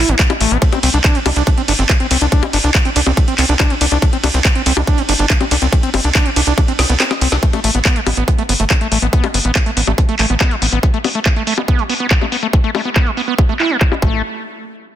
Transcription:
0.00 E4
0.09 A1 A3, closed hi-hat
0.19 G3, kick, clap, closed hi-hat
0.30 E4, closed hi-hat, high bongo
0.41 A1 A3, open hi-hat
0.51 A1 C4, closed hi-hat
0.62 C4, kick, closed hi-hat, ride
0.72 C4, closed hi-hat, high bongo
0.83 C2 C4, open hi-hat, ride
0.94 C2 D4, closed hi-hat
1.04 D4, kick, clap, closed hi-hat, ride
1.15 B3, closed hi-hat
1.26 C2 D4, open hi-hat, ride, high bongo
1.36 C2 D4, closed hi-hat
1.47 D4, kick, closed hi-hat, ride
1.58 C4, closed hi-hat
1.68 G1 D4, open hi-hat, ride
1.79 G1 C4, closed hi-hat
1.89 C4, kick, clap, closed hi-hat, ride, high bongo
2.00 C4, closed hi-hat
2.11 C2 C4, open hi-hat, ride
2.21 C2 D4, closed hi-hat
2.32 D4, kick, closed hi-hat, ride
2.43 B3, closed hi-hat, high bongo
2.53 G1 D4, open hi-hat, ride
2.64 C2 D4, closed hi-hat
2.75 D4, kick, clap, closed hi-hat, ride
2.85 C4, closed hi-hat
2.96 C2 D4, open hi-hat, ride
3.07 C2 C4, closed hi-hat, high bongo
3.17 C4, kick, closed hi-hat, ride
3.28 C4, closed hi-hat
3.38 C2 C4, clap, open hi-hat, ride
3.49 C2 D4, closed hi-hat
3.60 D4, kick, clap, closed hi-hat, ride, high bongo
3.70 B3, closed hi-hat
3.81 C2 D4, open hi-hat, ride
3.92 C2 D4, closed hi-hat
4.02 D4, kick, closed hi-hat, ride
4.13 C4, closed hi-hat
4.24 C2 D4, open hi-hat, ride, high bongo
4.34 C2 C4, closed hi-hat
4.45 C4, kick, clap, closed hi-hat, ride
4.55 C4, closed hi-hat
4.66 C2 C4, open hi-hat, ride
4.77 C2 D4, high bongo
4.87 D4, kick, closed hi-hat, ride
4.98 B3, closed hi-hat
5.09 G1 D4, open hi-hat, ride
5.19 G1 D4, closed hi-hat
5.30 D4, kick, clap, closed hi-hat, ride
5.41 C4, closed hi-hat, high bongo
5.51 C2 D4, open hi-hat, ride
5.62 C2 C4, closed hi-hat
5.72 C4, kick, closed hi-hat, ride
5.83 C4, closed hi-hat
5.94 G1 C4, open hi-hat, ride, high bongo
6.04 C2 D4, closed hi-hat
6.15 D4, kick, clap, closed hi-hat, ride
6.26 B3, closed hi-hat
6.36 C2 D4, open hi-hat, ride
6.47 C2 D4, closed hi-hat
6.58 D4, kick, closed hi-hat, ride, high bongo
6.68 C4, closed hi-hat
6.79 C2 C4, snare, open hi-hat, ride
6.90 C2 B3, closed hi-hat
7.00 C4, snare, clap, closed hi-hat, ride
7.11 C4, snare, closed hi-hat, high bongo
7.21 C2 C4, open hi-hat, ride
7.32 C2 D4, snare, closed hi-hat
7.43 A3, kick, closed hi-hat
7.53 A3, closed hi-hat, high bongo
7.64 A1 A3, open hi-hat
7.75 A1 B3, closed hi-hat
7.85 B3, kick, clap, closed hi-hat
7.96 G3, closed hi-hat
8.07 A1 B3, open hi-hat, high bongo
8.17 A1 B3, closed hi-hat
8.28 B3, kick, closed hi-hat
8.38 A3, closed hi-hat
8.49 G1 B3, open hi-hat
8.60 G1 A3, closed hi-hat
8.70 A3, kick, clap, closed hi-hat, high bongo
8.81 A3, closed hi-hat
8.92 A1 A3, open hi-hat
9.02 A1 B3, closed hi-hat
9.13 B3, kick, closed hi-hat
9.24 G3, closed hi-hat, high bongo
9.34 G1 B3, open hi-hat
9.45 A1 B3, closed hi-hat
9.55 B3, kick, clap, closed hi-hat
9.66 A3, closed hi-hat
9.77 A1 B3, open hi-hat
9.87 A1 A3, high bongo
9.98 A3, kick, closed hi-hat
10.09 A3, closed hi-hat
10.19 A1 A3, clap, open hi-hat
10.30 A1 B3, closed hi-hat
10.41 B3, kick, clap, closed hi-hat, high bongo
10.51 G3, closed hi-hat
10.62 A1 B3, open hi-hat
10.72 A1 B3, closed hi-hat
10.83 B3, kick, closed hi-hat
10.94 A3, closed hi-hat
11.04 B3, open hi-hat, high bongo
11.15 A3, closed hi-hat
11.26 A3, kick, clap, closed hi-hat
11.36 A3, closed hi-hat
11.47 A3, open hi-hat
11.58 B3, high bongo
11.68 B3, kick, closed hi-hat
11.79 G3, closed hi-hat
11.90 B3, open hi-hat
12.00 B3, closed hi-hat
12.11 B3, kick, clap, closed hi-hat
12.21 A3, closed hi-hat, high bongo
12.32 B3, open hi-hat
12.43 A3, closed hi-hat
12.53 A3, kick, closed hi-hat
12.64 A3, closed hi-hat
12.75 A3, open hi-hat, high bongo
12.85 B3, closed hi-hat
12.96 B3, kick, clap, closed hi-hat
13.07 G3, closed hi-hat
13.17 B3, open hi-hat
13.28 B3, closed hi-hat
13.38 B3, kick, closed hi-hat, high bongo
13.49 A3, closed hi-hat
13.60 E4, clap, open hi-hat
13.70 A3
13.81 G3, kick, clap, closed hi-hat
13.92 E4, closed hi-hat, high bongo
14.02 A1 A3, kick

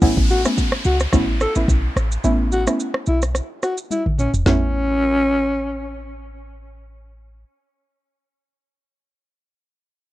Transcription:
0.02 A1 A3 B3 C#4 E4, kick, downlifter, shaker
0.17 kick
0.30 F#4, shaker
0.45 A3 B3 C#4 E4, cross-stick, shaker
0.58 kick, shaker
0.72 cross-stick
0.84 C#2 F#4, shaker
1.00 cross-stick, shaker
1.13 A1 A3 B3 C#4 E4, kick, cross-stick, shaker
1.41 A4, cross-stick, shaker
1.55 A1 A3 B3 C#4 E4, shaker
1.68 B1, kick, shaker
1.96 A1, cross-stick, shaker
2.12 shaker
2.24 A1 A3 B3 C#4 E4, shaker
2.52 F#4, shaker
2.67 A3 B3 C#4 E4, cross-stick, shaker
2.80 shaker
2.94 cross-stick
3.06 B1 E4, shaker
3.22 cross-stick, shaker
3.35 cross-stick, shaker
3.63 F#4, cross-stick, shaker
3.78 shaker
3.91 E4, high tom, shaker
4.06 A1, mid tom
4.18 C#4, mid tom, shaker
4.34 E1, floor tom, shaker
4.46 A1 A3 B3 C#4 E4, snare, floor tom

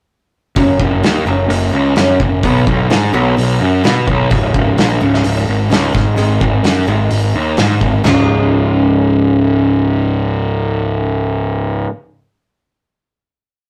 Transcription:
0.56 F#1 F#2 C#3 F#3, kick, open hi-hat
0.79 F#1 F#2 C#3, kick
1.03 D#2 F#2 C#3, snare, open hi-hat
1.25 F#1 F#2 C#3 F#3
1.49 F#1 F#2 C#3, open hi-hat
1.73 C#2 F#2 C#3
1.96 F#2 C#3 F#3, snare, open hi-hat
2.20 F#1 F#2 C#3, kick
2.43 B1 B2 F#3 B3, kick, open hi-hat
2.67 B1 B2 F#3, kick
2.90 G#2 B2 F#3, snare, open hi-hat
3.13 B1 B2 F#3 B3
3.37 B1 B2 F#3, open hi-hat
3.59 F#2 B2 F#3
3.83 B2 F#3 B3, snare, open hi-hat
4.07 B1 B2 F#3, kick
4.30 C#1 C#2 G#2 C#3, kick, open hi-hat
4.54 C#1 C#2 G#2, kick
4.77 A#1 C#2 G#2, snare, open hi-hat
5.00 C#1 C#2 G#2 C#3
5.14 snare
5.23 C#1 C#2 G#2, open hi-hat
5.48 G#1 C#2 G#2
5.70 C#2 G#2 C#3, snare, open hi-hat
5.93 G#1 G#2 D#3 G#3, kick, snare
6.16 G#1 G#2 D#3 G#3, open hi-hat
6.40 G#1 G#2 D#3, kick
6.63 F#2 G#2 D#3, snare, open hi-hat
6.87 G#1 G#2 D#3 G#3
7.11 G#1 G#2 D#3, open hi-hat
7.34 D#2 G#2 D#3
7.57 G#2 D#3 G#3, snare, open hi-hat
7.81 G#1 G#2 D#3, kick
8.04 C#1 C#2 G#2 C#3 G#3 F4, snare, floor tom, splash

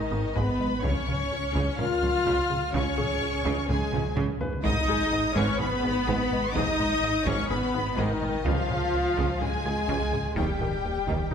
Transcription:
Already playing: G#1 D#3 D#4 D#5
0.11 G#1 G#2 B3
0.35 G#1 G#2 G#3 B3 B4 B5, taiko
0.60 G#3, taiko low-mid
0.82 C#2 C#3 C#4 C#5 C#6, taiko
1.08 C#3, taiko low-mid
1.32 C#2
1.55 C#2 C#3, taiko
1.77 C#2 C#3 C#4 F4 A#4 F5 F6, taiko low-mid
2.02 C#2 C#3 F3
2.26 C#2 C#3, taiko
2.50 C#3, taiko low-mid
2.73 C#2 C#3 C#4 C#5 C#6, taiko
2.98 C#3 G#4, taiko low-mid
3.22 C#2
3.45 C#2 C#3, taiko
3.68 C#2 C#3 G#3 C#4 G#4 G#5, taiko low-mid
3.92 C#2 C#3 F3, taiko low-mid
4.16 C#2 C#3, taiko low-mid
4.41 C#3 B4, taiko low
4.63 G#1 G#2 G#3 D#4 D#5 D#6, taiko
4.88 G#3 G#4, taiko low-mid
5.12 G#2
5.35 G#1 G#2 G#3 C#4 B4 C#5 C#6, taiko
5.59 G#1 G#2 B3 G#4 B4 B5, taiko low-mid
5.83 G#1 G#2 B3
6.07 G#1 G#2 G#3, taiko
6.31 G#3, taiko low-mid
6.54 G#1 G#2 G#3 D#4 D#5 D#6, taiko
6.79 G#3, taiko low-mid
7.03 G#2
7.25 G#1 G#2 G#3 C#4 C#5 C#6, taiko
7.49 G#1 G#2 B3 G#4 B4 B5, taiko low-mid
7.74 G#1 G#2 B3
7.96 G#1 G#2 D#3 G#3 D#4 A#4 D#5, taiko
8.22 G#3, taiko low-mid
8.45 C#2 C#3 F3 F4 F5, taiko
8.69 C#3, taiko low-mid
8.94 C#2
9.17 C#2 C#3, taiko
9.40 C#2 C#3 G#3 C#4 G#4 G#5, taiko low-mid
9.65 C#2 C#3 F3 G#3 F4
9.89 C#2 C#3, taiko
10.12 C#3, taiko low-mid
10.35 D#1 D#2 D#3 G3 G4 G5, taiko
10.60 D#3, taiko low-mid
10.85 D#2
11.07 D#2 D#3, taiko
11.31 D#4

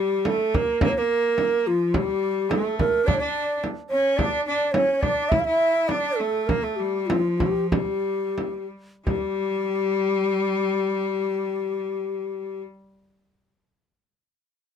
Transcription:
Already playing: G3 G4
0.25 A3 A4, frame drum
0.54 A#3 A#4, frame drum
0.81 A#3 A#4, frame drum
0.89 C#5
0.98 A#3 A#4
1.38 frame drum
1.66 F3 F4
1.94 G3 G4, frame drum
2.49 A3 A4, frame drum
2.79 A#4, frame drum
3.06 D4 D5, frame drum
3.14 C#5
3.20 D4 D5
3.64 frame drum
3.90 C#4 C#5
4.17 D4 D5, frame drum
4.46 D4 D5
4.72 C#4 C#5, frame drum
5.01 D4 D5, frame drum
5.29 E4 E5, frame drum
5.40 F5
5.44 E4 E5
5.88 D4 D5, frame drum
6.17 A3 A4
6.47 A#3 A#4, frame drum
6.62 A3 A4
6.76 G3 G4
7.07 F3 F4, frame drum
7.38 G4, frame drum
7.71 G3 G4, frame drum
8.38 frame drum
9.05 G3 G4, frame drum

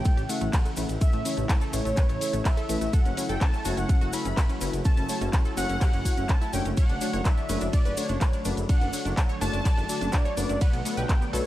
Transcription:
Already playing: C#3 E3 A3 C#4 E4 C#5 G5
0.05 A3, kick, closed hi-hat, ride, cabasa
0.17 A1 G4, closed hi-hat, cabasa
0.29 A3 C#4 E4 E5 F#5, open hi-hat, cabasa
0.41 A1 A3, closed hi-hat, cabasa
0.53 kick, clap, closed hi-hat, ride, cabasa
0.65 A3, closed hi-hat, cabasa
0.76 A1 A3 C#4 E4 B4, open hi-hat, cabasa
0.89 A1, closed hi-hat, cabasa
1.01 A3 E5, kick, closed hi-hat, ride, cabasa
1.12 A1 A3, closed hi-hat, cabasa
1.25 A3 C#4 E4 C#5, open hi-hat, cabasa
1.37 A1 A3, closed hi-hat, cabasa
1.49 A3, kick, clap, closed hi-hat, ride, cabasa
1.61 A4, cabasa
1.73 A1 A3 C#4 E4 C#5, open hi-hat, cabasa
1.85 A1 A3, closed hi-hat, cabasa
1.97 B4, kick, clap, closed hi-hat, ride, cabasa
2.09 A1 A3, closed hi-hat, cabasa
2.21 A3 C#4 E4 E5, open hi-hat, cabasa
2.33 A1 A3, closed hi-hat, cabasa
2.45 A3 E5, kick, clap, closed hi-hat, ride, cabasa
2.57 A4, closed hi-hat, cabasa
2.69 A1 A3 C#4 E4 B4, open hi-hat, cabasa
2.81 A1 A3, closed hi-hat, cabasa
2.93 C#3 F#3 A3 A4 F#5, kick, closed hi-hat, ride, cabasa
3.05 F#1 C#4, closed hi-hat, cabasa
3.17 A3 C#4 E4 F#4 C#5, open hi-hat, cabasa
3.29 F#1 A4 G5, closed hi-hat, cabasa
3.41 C#4 A5, kick, clap, closed hi-hat, ride, cabasa
3.53 C#4, cabasa
3.65 F#1 A3 E4 F#4 C#5, open hi-hat, cabasa
3.77 F#1 C#4 F#5, closed hi-hat, cabasa
3.89 C#4, kick, closed hi-hat, ride, cabasa
4.01 F#1 F#4, closed hi-hat, cabasa
4.13 A3 C#4 E4 F#4 E5 B5, open hi-hat, cabasa
4.25 F#1 C#4, closed hi-hat, cabasa
4.37 kick, clap, closed hi-hat, ride, cabasa
4.49 C#4, closed hi-hat, cabasa
4.61 F#1 A3 C#4 E4 F#4 B4, open hi-hat, cabasa
4.73 F#1, closed hi-hat, cabasa
4.85 C#4 A5, kick, closed hi-hat, ride, cabasa
4.97 F#1 C#4, closed hi-hat, cabasa
5.09 A3 E4 F#4 C#5, open hi-hat, cabasa
5.21 F#1 C#4, closed hi-hat, cabasa
5.33 C#4, kick, clap, closed hi-hat, ride, cabasa
5.45 A4, cabasa
5.57 F#1 A3 C#4 E4 F#4 C#5 F#5, open hi-hat, cabasa
5.69 F#1 C#4, closed hi-hat, cabasa
5.81 G4, kick, clap, closed hi-hat, ride, cabasa
5.93 F#1 C#4, closed hi-hat, cabasa
6.05 A3 E4 F#4 C#5, kick, open hi-hat, cabasa
6.17 F#1 C#4, closed hi-hat, cabasa
6.29 C#4 A5, kick, clap, closed hi-hat, ride, cabasa
6.41 E4, closed hi-hat, cabasa
6.53 F#1 A3 C#4 D4 F#4 C#5 G5, open hi-hat, cabasa
6.65 F#1 C#4, closed hi-hat, cabasa
6.77 D3 F#3 A3 C#5 F#5, kick, closed hi-hat, ride, cabasa
6.89 F#1 D4, closed hi-hat, cabasa
7.01 A3 D4 F#4 C#5, open hi-hat, cabasa
7.13 F#1 C#5, closed hi-hat, cabasa
7.25 D4 E5, kick, clap, closed hi-hat, ride, cabasa
7.37 D4, cabasa
7.49 F#1 A3 D4 F#4 B4 C#5, open hi-hat, cabasa
7.61 F#1 D4, closed hi-hat, cabasa
7.73 D4 D5, kick, closed hi-hat, ride, cabasa
7.85 F#1 B4, closed hi-hat, cabasa
7.97 A3 D4 F#4 C#5 D5, open hi-hat, cabasa
8.09 F#1 D4, closed hi-hat, cabasa
8.21 kick, clap, closed hi-hat, ride, cabasa
8.33 D4, closed hi-hat, cabasa
8.45 F#1 A3 D4 F#4 B4, open hi-hat, cabasa
8.57 F#1, closed hi-hat, cabasa
8.69 D4 F#5, kick, closed hi-hat, ride, cabasa
8.81 F#1 D4, closed hi-hat, cabasa
8.93 A3 D4 F#4 C#5, open hi-hat, cabasa
9.05 F#1 D4, closed hi-hat, cabasa
9.17 D4, kick, clap, closed hi-hat, ride, cabasa
9.29 C#5, cabasa
9.41 F#1 A3 D4 F#4 C#5 A5, open hi-hat, cabasa
9.53 F#1 D4, closed hi-hat, cabasa
9.65 D5, kick, clap, closed hi-hat, ride, cabasa
9.77 F#1 D4, closed hi-hat, cabasa
9.89 A3 D4 F#4 D5, open hi-hat, cabasa
10.01 F#1 D4, closed hi-hat, cabasa
10.12 D4 D5, kick, clap, closed hi-hat, ride, cabasa
10.25 C#5, closed hi-hat, cabasa
10.37 F#1 A3 D4 F#4 B4, open hi-hat, cabasa
10.49 F#1 D4, closed hi-hat, cabasa
10.61 B3 B4 F#5, kick, closed hi-hat, ride, cabasa
10.73 B1 B3, closed hi-hat, cabasa
10.85 F#3 A3 B3 D4 B4, open hi-hat, cabasa
10.97 B1 B4 G5, closed hi-hat, cabasa
11.09 B3, kick, clap, closed hi-hat, ride, cabasa
11.21 B3, cabasa
11.33 B1 A3 D4 F#4 A4 B4 C#5, open hi-hat, cabasa

